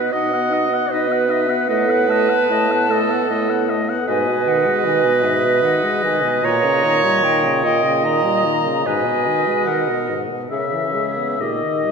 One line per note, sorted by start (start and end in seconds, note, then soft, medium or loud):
0.00 0.12 B3 soft
0.00 0.14 B4 medium
0.00 0.11 D#5 medium
0.00 0.12 F#5 soft
0.12 0.82 B2 medium
0.12 0.34 D#4 medium
0.12 0.35 D#5 soft
0.12 0.93 D#5 medium
0.12 0.92 F#5 medium
0.32 0.53 B3 soft
0.32 0.54 F#5 soft
0.51 0.72 D#4 medium
0.51 0.75 D#5 soft
0.71 0.89 B3 soft
0.71 0.92 F#5 soft
0.90 1.59 B2 medium
0.90 1.10 D#4 medium
0.90 1.69 B4 medium
0.90 1.29 D#5 medium
0.90 1.14 D#5 medium
1.09 1.30 B3 soft
1.09 1.32 F#5 medium
1.28 1.50 D#4 soft
1.28 1.51 D#5 medium
1.28 1.70 E5 medium
1.49 1.68 B3 medium
1.49 1.69 F#5 soft
1.68 2.40 A2 medium
1.68 1.90 A3 medium
1.68 2.92 B4 loud
1.68 1.92 D#5 medium
1.68 2.10 F#5 medium
1.89 2.09 B3 medium
1.89 2.12 F#5 medium
2.08 2.31 A3 medium
2.08 2.31 D#5 medium
2.08 3.83 A5 medium
2.30 2.50 B3 medium
2.30 2.50 F#5 medium
2.50 3.20 A2 medium
2.50 2.71 A3 medium
2.50 2.73 D#5 medium
2.69 2.91 B3 medium
2.69 2.93 F#5 medium
2.89 3.11 A3 medium
2.89 3.69 A4 medium
2.89 3.12 D#5 medium
3.10 3.29 B3 medium
3.10 3.30 F#5 medium
3.30 3.99 A2 medium
3.30 3.51 A3 medium
3.30 3.51 D#5 medium
3.50 3.71 B3 medium
3.50 3.71 F#5 medium
3.70 3.91 A3 medium
3.70 3.91 D#5 medium
3.89 4.07 B3 medium
3.89 4.08 F#5 medium
4.08 4.29 G#2 medium
4.08 6.27 B2 medium
4.08 6.46 B4 loud
4.08 8.68 D#5 medium
4.08 4.50 G#5 medium
4.27 4.49 B2 medium
4.47 4.67 D#3 medium
4.47 4.87 F#5 medium
4.66 4.87 G#3 medium
4.86 5.06 D#3 medium
4.86 5.27 G#5 medium
5.05 5.25 B2 medium
5.24 5.46 G#2 medium
5.24 5.66 E5 medium
5.44 5.65 B2 medium
5.63 5.85 D#3 medium
5.63 6.04 F#5 medium
5.83 6.05 G#3 medium
6.04 6.25 D#3 medium
6.04 6.46 G#5 medium
6.23 6.42 B2 medium
6.43 6.64 A#2 medium
6.43 8.82 A#2 medium
6.43 7.64 C#5 loud
6.43 7.25 A#5 medium
6.63 6.85 C#3 medium
6.84 7.05 D#3 medium
7.04 7.25 G3 medium
7.23 7.45 D#3 medium
7.23 7.64 G5 medium
7.44 7.65 C#3 medium
7.64 7.85 A#2 medium
7.64 8.04 D#5 medium
7.64 8.06 G5 medium
7.83 8.06 C#3 medium
8.04 8.26 D#3 medium
8.04 8.88 D#5 medium
8.04 8.85 A#5 medium
8.24 8.46 G3 medium
8.45 8.67 D#3 medium
8.66 8.86 C#3 medium
8.85 9.08 G#2 medium
8.85 10.21 B2 medium
8.85 9.69 B4 medium
8.85 10.20 D#5 medium
8.85 9.65 G#5 medium
9.07 9.28 B2 medium
9.27 9.49 D#3 medium
9.47 9.69 G#3 medium
9.66 9.90 D#3 medium
9.66 10.23 A#4 medium
9.66 10.22 F#5 medium
9.89 10.11 B2 medium
10.09 10.31 G#2 medium
10.29 10.50 B2 medium
10.51 10.74 C#3 soft
10.51 11.42 C#3 medium
10.51 10.60 G#4 medium
10.51 11.42 E5 medium
10.51 11.36 E5 medium
10.59 10.69 A#4 medium
10.67 10.78 G#4 medium
10.72 10.96 E3 soft
10.76 10.86 A#4 medium
10.85 10.95 G#4 medium
10.93 11.18 G#3 soft
10.93 11.04 A#4 medium
11.02 11.42 G#4 medium
11.17 11.39 B3 soft
11.39 11.65 A#2 soft
11.39 11.92 D#3 medium
11.39 11.92 G4 medium
11.39 11.92 D#5 medium
11.39 11.92 D#5 soft
11.63 11.87 D#3 soft
11.85 11.92 G3 soft